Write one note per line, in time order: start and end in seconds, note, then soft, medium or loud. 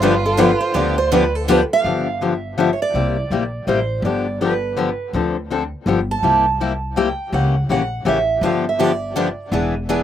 0.00 0.53 G1 loud
0.00 0.13 D3 medium
0.00 0.14 F3 medium
0.00 0.13 B3 loud
0.00 0.14 D4 medium
0.00 1.71 F4 loud
0.00 0.14 G4 medium
0.00 0.24 B4 medium
0.26 0.38 A4 loud
0.38 0.49 D3 loud
0.38 0.50 F3 loud
0.38 0.50 B3 loud
0.38 0.50 D4 loud
0.38 0.50 G4 loud
0.38 0.60 B4 medium
0.61 0.74 C5 medium
0.74 1.62 D2 medium
0.74 0.95 D3 medium
0.74 0.96 F3 medium
0.74 0.96 B3 medium
0.74 0.96 D4 medium
0.74 0.96 G4 medium
0.74 0.98 D5 medium
0.98 1.11 C5 loud
1.11 1.23 D3 medium
1.11 1.23 F3 loud
1.11 1.23 B3 loud
1.11 1.23 D4 loud
1.11 1.23 G4 medium
1.11 1.35 B4 loud
1.35 1.50 A4 loud
1.48 1.59 D3 loud
1.48 1.60 F3 loud
1.48 1.60 B3 loud
1.48 1.60 D4 loud
1.48 1.60 G4 loud
1.48 1.63 B4 medium
1.73 2.33 F5 loud
1.84 2.72 G1 medium
1.84 2.06 D3 medium
1.84 2.06 F3 medium
1.84 2.06 B3 medium
1.84 2.06 D4 medium
1.84 2.06 G4 medium
2.21 2.32 D3 medium
2.21 2.33 F3 medium
2.21 2.33 B3 medium
2.21 2.33 D4 medium
2.21 2.33 G4 medium
2.33 2.60 E5 loud
2.58 2.69 D3 medium
2.58 2.69 F3 medium
2.58 2.69 B3 medium
2.58 2.69 D4 medium
2.58 2.69 G4 medium
2.58 2.72 E5 medium
2.73 2.81 C#5 medium
2.82 3.68 D5 medium
2.94 3.23 C2 medium
2.94 3.15 C3 medium
2.94 3.16 G3 medium
2.94 3.16 A#3 medium
2.94 3.16 E4 medium
2.94 3.16 G4 medium
3.30 3.62 A#1 medium
3.30 3.42 C3 medium
3.30 3.42 G3 medium
3.30 3.42 A#3 medium
3.30 3.43 E4 medium
3.30 3.43 G4 medium
3.67 3.98 A1 medium
3.67 3.79 C3 medium
3.67 3.79 G3 medium
3.67 3.79 A#3 medium
3.67 3.79 E4 medium
3.67 3.79 G4 medium
3.67 4.02 C5 medium
4.02 4.91 G1 medium
4.02 4.25 D3 medium
4.02 4.25 F3 medium
4.02 4.26 B3 medium
4.02 4.26 D4 medium
4.02 4.26 G4 medium
4.02 4.41 D5 medium
4.41 4.52 D3 medium
4.41 4.52 F3 medium
4.41 4.52 B3 medium
4.41 4.52 D4 medium
4.41 4.52 G4 medium
4.41 5.10 B4 medium
4.77 4.88 D3 medium
4.77 4.88 F3 medium
4.77 4.88 B3 medium
4.77 4.89 D4 medium
4.77 4.89 G4 medium
5.13 5.72 D2 medium
5.13 5.35 D3 medium
5.13 5.35 F3 medium
5.13 5.35 C4 medium
5.13 5.35 D4 medium
5.13 5.36 A4 medium
5.50 5.61 D3 medium
5.50 5.62 F3 medium
5.50 5.62 C4 medium
5.50 5.62 D4 medium
5.50 5.62 A4 medium
5.86 6.15 G1 medium
5.86 5.98 D3 medium
5.86 5.98 F3 medium
5.86 5.99 B3 medium
5.86 5.99 D4 medium
5.86 5.99 G4 medium
6.11 6.97 A5 medium
6.23 7.11 C2 medium
6.23 6.44 C3 medium
6.23 6.44 G3 medium
6.23 6.45 A#3 medium
6.23 6.45 E4 medium
6.23 6.45 G4 medium
6.60 6.71 C3 medium
6.60 6.72 G3 medium
6.60 6.72 A#3 medium
6.60 6.72 E4 medium
6.60 6.72 G4 medium
6.96 7.07 C3 medium
6.96 7.08 G3 medium
6.96 7.08 A#3 medium
6.96 7.08 E4 loud
6.96 7.08 G4 medium
6.96 7.34 G5 medium
7.32 7.62 C#2 medium
7.32 7.54 C#3 medium
7.32 7.54 E3 medium
7.32 7.54 A#3 medium
7.32 7.54 C#4 medium
7.32 7.54 G4 medium
7.32 7.70 F#5 medium
7.69 8.00 A#1 medium
7.69 7.81 C#3 medium
7.69 7.81 E3 medium
7.69 7.81 A#3 medium
7.69 7.81 C#4 medium
7.69 7.81 G4 medium
7.69 8.08 F#5 medium
8.05 8.37 A1 medium
8.05 8.17 C#3 medium
8.05 8.17 E3 medium
8.05 8.17 A#3 medium
8.05 8.17 C#4 medium
8.05 8.17 G4 loud
8.05 8.45 E5 medium
8.41 9.30 G1 medium
8.41 8.64 D3 medium
8.41 8.64 F3 medium
8.41 8.64 B3 medium
8.41 8.64 D4 medium
8.41 8.64 G4 medium
8.41 8.65 F5 medium
8.69 8.83 E5 medium
8.79 8.90 D3 medium
8.79 8.90 F3 medium
8.79 8.91 B3 medium
8.79 8.91 D4 medium
8.79 8.91 G4 medium
8.83 9.54 D5 medium
9.16 9.27 D3 medium
9.16 9.27 F3 medium
9.16 9.27 B3 medium
9.16 9.27 D4 medium
9.16 9.28 G4 medium
9.52 10.03 E1 medium
9.52 9.73 E3 medium
9.52 9.73 B3 medium
9.52 9.74 D4 medium
9.52 9.74 G#4 medium
9.52 9.74 B4 medium
9.89 10.00 E3 medium
9.89 10.00 B3 medium
9.89 10.00 D4 medium
9.89 10.01 G#4 medium
9.89 10.01 B4 medium